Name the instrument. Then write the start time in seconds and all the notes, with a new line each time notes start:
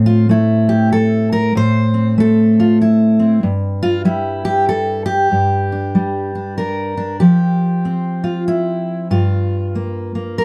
steel-string acoustic guitar
Already playing: A2 A3 C4
0.06 F4
0.29 A3 E4
0.69 G4
0.93 A4
1.32 A#4
1.55 A2 C5
1.94 C4
2.18 A3 A4
2.60 F4
2.81 E4
3.19 C4
3.43 G2
3.83 F4
4.05 G3 E4
4.45 G4
4.69 A4
5.06 G4
5.32 G2
5.72 D4
5.95 G3
6.35 D4
6.58 D4 A#4
6.97 D4
7.20 F3 G4
7.85 C4
8.24 F4
8.48 E4
9.10 G2 F4
9.75 A#3
10.15 A#3
10.38 A#4